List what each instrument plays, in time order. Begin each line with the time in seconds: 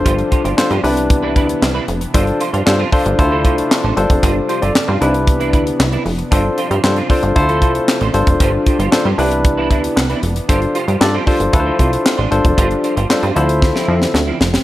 Already playing: analog synth pad C3 F3 G3 D4, tine electric piano D4 F4 A4 C5
0.05 analog synth bass G1, clean electric guitar F4 G4 C5, kick, closed hi-hat
0.18 muted clean electric guitar stroke, closed hi-hat
0.31 clean electric guitar F4 G4 C5, kick, closed hi-hat
0.44 analog synth bass G1, clean electric guitar F4 G4 C5, closed hi-hat
0.57 analog synth bass G2, tine electric piano D4 F4 A4 C5, snare, clap
0.70 analog synth bass G2, clean electric guitar F4 G4 C5, closed hi-hat
0.83 analog synth bass C2, analog synth pad C3 E3 B3, tine electric piano D4 E4 G4 B4, clean electric guitar D4 E4 B4, open hi-hat
0.97 muted clean electric guitar stroke, closed hi-hat
1.10 muted clean electric guitar stroke, kick, closed hi-hat
1.22 clean electric guitar D4 E4 B4
1.36 analog synth bass D2, clean electric guitar D4 E4 B4, kick, closed hi-hat
1.49 muted clean electric guitar stroke, closed hi-hat
1.62 analog synth bass C2, muted clean electric guitar stroke, snare, clap
1.74 clean electric guitar D4 E4 B4
1.87 analog synth bass F1, muted clean electric guitar stroke, closed hi-hat
2.01 muted clean electric guitar stroke, closed hi-hat
2.14 analog synth bass G1, analog synth pad F3 G3 D4, clean electric guitar D4 F4 C5, tine electric piano D4 F4 A4 C5, kick, closed hi-hat
2.27 muted clean electric guitar stroke, closed hi-hat
2.40 clean electric guitar D4 F4 C5, closed hi-hat
2.53 analog synth bass G2, clean electric guitar D4 F4 C5, closed hi-hat
2.66 analog synth bass G2, tine electric piano D4 F4 A4 C5, snare, clap
2.79 clean electric guitar D4 F4 C5
2.91 clean electric guitar D4 F4 C5, tine electric piano D4 F4 A4 C5, kick, open hi-hat
3.05 analog synth bass G1, muted clean electric guitar stroke, closed hi-hat
3.18 analog synth bass D2, analog synth pad C3 A3, tine electric piano E4 F4 A4 C5, muted clean electric guitar stroke, kick, closed hi-hat
3.31 clean electric guitar F4 A4 C5
3.44 analog synth bass C2, clean electric guitar F4 A4 C5, kick, closed hi-hat
3.58 closed hi-hat
3.71 snare, clap
3.83 analog synth bass A1, clean electric guitar F4 A4 C5
3.96 analog synth bass G1, analog synth pad C3 G3, tine electric piano D4 F4 A4 C5, muted clean electric guitar stroke, closed hi-hat
4.10 analog synth bass F1, muted clean electric guitar stroke, kick, closed hi-hat
4.23 analog synth bass G1, clean electric guitar D4 F4 C5, kick, closed hi-hat
4.36 muted clean electric guitar stroke
4.49 clean electric guitar D4 F4 C5, tine electric piano G4 C5, closed hi-hat
4.62 analog synth bass G1, clean electric guitar D4 F4 C5, tine electric piano A4 D5, closed hi-hat
4.75 analog synth bass G2, snare, clap
4.88 analog synth bass G2, clean electric guitar D4 F4 C5, tine electric piano C5 F5
5.01 analog synth bass C2, analog synth pad E3 B3 D4, clean electric guitar D4 E4 B4, tine electric piano D4 D#4 G4 B4, closed hi-hat
5.07 tine electric piano E4
5.14 muted clean electric guitar stroke, closed hi-hat
5.27 muted clean electric guitar stroke, kick, closed hi-hat
5.40 clean electric guitar D4 E4 B4, closed hi-hat
5.53 analog synth bass D2, clean electric guitar D4 E4 B4, kick, closed hi-hat
5.66 muted clean electric guitar stroke, closed hi-hat
5.79 analog synth bass C2, muted clean electric guitar stroke, snare, clap
5.92 clean electric guitar D4 E4 B4, closed hi-hat
6.05 analog synth bass F1, muted clean electric guitar stroke, open hi-hat
6.18 muted clean electric guitar stroke, closed hi-hat
6.31 analog synth bass G1, analog synth pad F3 G3 D4, clean electric guitar D4 F4 C5, tine electric piano D4 F4 A4 C5, kick, closed hi-hat
6.45 muted clean electric guitar stroke
6.57 clean electric guitar D4 F4 C5, closed hi-hat
6.71 analog synth bass G2, clean electric guitar D4 F4 C5, closed hi-hat
6.83 analog synth bass G2, tine electric piano D4 F4 A4 C5, snare, clap
6.96 clean electric guitar D4 F4 C5, closed hi-hat
7.09 tine electric piano D4 F4 A4 C5, clean electric guitar D4 F4 C5, kick, open hi-hat
7.23 analog synth bass G1, closed hi-hat
7.35 analog synth bass D2, analog synth pad A3, tine electric piano E4 F4 A4 C5, muted clean electric guitar stroke, kick, closed hi-hat
7.48 clean electric guitar F4 A4 C5, closed hi-hat
7.62 analog synth bass C2, clean electric guitar F4 A4 C5, kick, closed hi-hat
7.75 muted clean electric guitar stroke, closed hi-hat
7.88 muted clean electric guitar stroke, snare, clap
8.01 analog synth bass A1, clean electric guitar F4 A4 C5, closed hi-hat
8.13 analog synth bass G1, analog synth pad G3, tine electric piano D4 F4 A4 C5, muted clean electric guitar stroke, closed hi-hat
8.27 analog synth bass F1, muted clean electric guitar stroke, kick, closed hi-hat
8.40 analog synth bass G1, clean electric guitar F4 G4 C5, kick, closed hi-hat
8.53 muted clean electric guitar stroke
8.66 clean electric guitar F4 G4 C5, kick, closed hi-hat
8.79 analog synth bass G1, clean electric guitar F4 G4 C5, closed hi-hat
8.92 analog synth bass G2, tine electric piano D4 F4 A4 C5, snare, clap
9.05 analog synth bass G2, clean electric guitar F4 G4 C5
9.18 analog synth bass C2, analog synth pad E3 B3, tine electric piano D4 E4 G4 B4, clean electric guitar D4 E4 B4, open hi-hat
9.31 muted clean electric guitar stroke, closed hi-hat
9.44 muted clean electric guitar stroke, kick, closed hi-hat
9.57 clean electric guitar D4 E4 B4
9.70 analog synth bass D2, clean electric guitar D4 E4 B4, kick, closed hi-hat
9.83 muted clean electric guitar stroke, closed hi-hat
9.96 analog synth bass C2, muted clean electric guitar stroke, snare, clap
10.10 clean electric guitar D4 E4 B4, closed hi-hat
10.23 analog synth bass F1, muted clean electric guitar stroke, closed hi-hat
10.36 muted clean electric guitar stroke, closed hi-hat
10.49 analog synth bass G1, analog synth pad F3 G3, tine electric piano D4 F4 A4 C5, clean electric guitar F4 G4 C5, kick, closed hi-hat
10.62 muted clean electric guitar stroke, closed hi-hat
10.75 clean electric guitar F4 G4 C5, closed hi-hat
10.88 analog synth bass G2, clean electric guitar F4 G4 C5, closed hi-hat
11.01 analog synth bass G2, tine electric piano D4 F4 A4 D5, snare, clap
11.14 clean electric guitar F4 G4 C5
11.27 tine electric piano D4 F4 A4 C5, clean electric guitar F4 G4 C5, kick, open hi-hat
11.40 analog synth bass G1, muted clean electric guitar stroke, closed hi-hat
11.53 analog synth bass D2, analog synth pad A3 D4, tine electric piano E4 F4 A4 B4, muted clean electric guitar stroke, kick, closed hi-hat
11.60 tine electric piano C5
11.66 clean electric guitar D4 F4 C5
11.79 analog synth bass C2, clean electric guitar D4 F4 C5, kick, closed hi-hat
11.92 muted clean electric guitar stroke, closed hi-hat
12.05 muted clean electric guitar stroke, snare, clap
12.18 analog synth bass A1, clean electric guitar D4 F4 C5
12.31 analog synth bass G1, analog synth pad F3 G3, tine electric piano D4 F4 A4 C5, muted clean electric guitar stroke, closed hi-hat
12.45 analog synth bass F1, muted clean electric guitar stroke, kick, closed hi-hat
12.57 analog synth bass G1, clean electric guitar D4 F4 C5, kick, closed hi-hat
12.70 muted clean electric guitar stroke, closed hi-hat
12.83 clean electric guitar D4 F4 C5, closed hi-hat
12.96 analog synth bass G1, clean electric guitar D4 F4 C5, closed hi-hat
13.10 analog synth bass G2, tine electric piano D4 F4 A4 C5, snare, clap
13.22 analog synth bass G2, clean electric guitar D4 F4 C5, closed hi-hat
13.36 analog synth bass D2, analog synth pad D3 C4 E5, clean electric guitar F3 C4 E4, tine electric piano E4 F4 A4 C5, closed hi-hat
13.49 muted clean electric guitar stroke, closed hi-hat
13.62 kick, snare
13.75 clean electric guitar F3 C4 E4, snare
13.88 analog synth bass F2, clean electric guitar F3 C4 E4
14.02 snare
14.14 analog synth bass D2, muted clean electric guitar stroke, snare
14.27 clean electric guitar F3 C4 E4
14.40 analog synth bass F1, snare
14.54 muted clean electric guitar stroke, snare